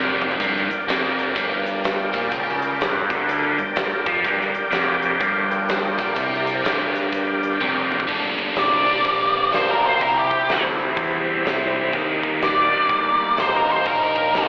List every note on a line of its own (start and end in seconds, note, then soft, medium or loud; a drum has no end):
0.00 0.37 F1 medium
0.00 0.40 F2 loud
0.00 0.36 A#4 medium
0.00 0.36 D5 medium
0.00 0.36 G5 medium
0.22 mid tom medium
0.32 floor tom medium
0.40 0.68 G1 medium
0.40 0.69 G2 loud
0.40 4.21 A#4 medium
0.40 4.21 D5 medium
0.40 4.20 G5 medium
0.40 kick medium
0.40 closed hi-hat medium
0.56 snare soft
0.70 muted picked electric bass stroke soft
0.70 muted overdriven electric guitar stroke medium
0.70 closed hi-hat medium
0.87 1.32 F1 medium
0.87 1.35 F2 medium
0.87 snare loud
0.87 closed hi-hat medium
1.19 closed hi-hat medium
1.35 2.10 G1 medium
1.35 2.13 G2 medium
1.35 kick loud
1.35 closed hi-hat medium
1.66 closed hi-hat medium
1.84 snare loud
1.84 closed hi-hat medium
2.13 2.31 A#1 medium
2.13 2.31 A#2 medium
2.13 kick loud
2.13 closed hi-hat medium
2.32 2.77 C#2 medium
2.32 2.80 C#3 loud
2.32 kick medium
2.32 closed hi-hat medium
2.49 snare soft
2.62 closed hi-hat medium
2.80 3.08 G1 medium
2.80 3.09 G2 medium
2.80 snare loud
2.80 closed hi-hat medium
3.09 3.55 D2 medium
3.09 3.57 D3 loud
3.09 kick medium
3.09 closed hi-hat medium
3.29 closed hi-hat medium
3.58 3.75 G1 medium
3.58 3.73 G2 medium
3.58 closed hi-hat medium
3.76 4.04 G1 medium
3.76 4.00 G2 medium
3.76 snare loud
3.76 closed hi-hat medium
4.06 4.23 F2 medium
4.06 4.24 F3 medium
4.06 kick loud
4.06 closed hi-hat medium
4.24 4.52 G1 medium
4.24 4.53 G2 medium
4.24 8.05 G4 medium
4.24 8.05 A#4 medium
4.24 8.05 D5 medium
4.24 8.05 G5 medium
4.24 kick loud
4.24 closed hi-hat medium
4.41 snare soft
4.54 muted overdriven electric guitar stroke medium
4.54 muted picked electric bass stroke soft
4.54 closed hi-hat medium
4.71 5.17 F1 medium
4.71 5.19 F2 loud
4.71 snare medium
4.71 closed hi-hat medium
5.02 closed hi-hat medium
5.20 5.94 G1 medium
5.20 5.97 G2 medium
5.20 kick loud
5.20 closed hi-hat medium
5.51 closed hi-hat medium
5.69 snare loud
5.69 closed hi-hat medium
5.98 6.15 A#1 medium
5.98 6.14 A#2 loud
5.98 kick loud
5.98 closed hi-hat medium
6.15 6.61 C2 medium
6.15 6.63 C3 loud
6.15 kick loud
6.15 closed hi-hat medium
6.33 snare soft
6.47 closed hi-hat medium
6.63 7.56 G1 medium
6.63 7.60 G2 loud
6.63 snare loud
6.63 closed hi-hat medium
6.95 closed hi-hat medium
7.13 kick loud
7.13 closed hi-hat medium
7.43 closed hi-hat medium
7.60 8.05 F1 medium
7.60 8.07 F2 loud
7.60 high tom medium
7.92 mid tom medium
8.00 kick medium
8.07 8.55 G1 medium
8.07 8.84 G2 medium
8.07 8.84 D3 medium
8.07 8.87 G3 medium
8.07 8.85 A#3 medium
8.07 9.98 D4 medium
8.07 8.84 D4 medium
8.07 9.98 G4 medium
8.07 9.98 A#4 medium
8.07 9.98 D5 medium
8.07 kick loud
8.07 open hi-hat soft
8.39 kick medium
8.56 9.03 C2 medium
8.56 9.51 D5 medium
8.56 snare loud
8.56 open hi-hat soft
8.85 9.50 G2 medium
8.85 9.51 D3 medium
8.85 9.53 G3 medium
8.85 9.52 A#3 medium
8.85 9.51 D4 medium
9.05 9.51 A#1 medium
9.05 kick loud
9.05 open hi-hat soft
9.51 9.99 D2 medium
9.51 9.99 G2 medium
9.51 9.99 D3 medium
9.51 10.00 G3 medium
9.51 10.01 A#3 medium
9.51 10.01 D4 medium
9.51 9.70 C5 medium
9.51 snare loud
9.51 open hi-hat soft
9.70 9.86 A#4 medium
9.86 10.01 C5 medium
9.99 10.48 C2 medium
9.99 10.77 C3 medium
9.99 10.80 G3 medium
9.99 11.91 C4 medium
9.99 10.78 C4 medium
9.99 11.92 E4 medium
9.99 11.92 G4 medium
9.99 10.18 A#4 medium
9.99 11.92 C5 medium
9.99 kick medium
9.99 open hi-hat soft
10.03 10.76 E4 medium
10.17 10.64 G4 medium
10.31 kick medium
10.49 10.96 D2 medium
10.49 snare medium
10.49 open hi-hat soft
10.77 11.43 C3 medium
10.77 11.45 G3 medium
10.77 11.44 C4 medium
10.77 11.43 E4 medium
10.96 11.44 E2 medium
10.96 kick loud
10.96 open hi-hat medium
11.44 11.92 C2 medium
11.44 11.92 C3 medium
11.44 11.93 G3 medium
11.44 11.93 C4 medium
11.44 11.94 E4 medium
11.44 snare loud
11.44 open hi-hat soft
11.93 12.40 D#2 medium
11.93 12.74 D#3 medium
11.93 12.73 G3 medium
11.93 12.72 A#3 medium
11.93 14.48 A#3 medium
11.93 14.48 D#4 medium
11.93 12.70 D#4 medium
11.93 14.48 G4 medium
11.93 14.48 A#4 medium
11.93 kick loud
11.93 open hi-hat soft
12.23 kick medium
12.42 12.70 A#1 medium
12.42 13.36 D5 medium
12.42 snare medium
12.42 open hi-hat soft
12.71 13.36 D#3 medium
12.71 13.37 G3 medium
12.71 13.37 A#3 medium
12.71 13.36 D#4 medium
12.71 muted picked electric bass stroke soft
12.89 13.36 G1 medium
12.89 kick loud
12.89 open hi-hat soft
13.37 13.84 A1 medium
13.37 13.83 D#3 medium
13.37 13.85 G3 medium
13.37 13.86 A#3 medium
13.37 13.86 D#4 medium
13.37 13.56 C5 medium
13.37 snare loud
13.37 open hi-hat soft
13.56 13.71 A#4 medium
13.72 13.86 C5 medium
13.84 14.32 A#1 medium
13.84 14.48 D#3 medium
13.84 14.48 G3 medium
13.84 14.48 A#3 medium
13.84 14.48 D#4 medium
13.84 14.02 A#4 medium
13.84 kick loud
13.84 open hi-hat soft
14.03 14.48 A#4 medium
14.16 kick medium
14.34 14.48 C2 medium
14.34 snare medium
14.34 open hi-hat soft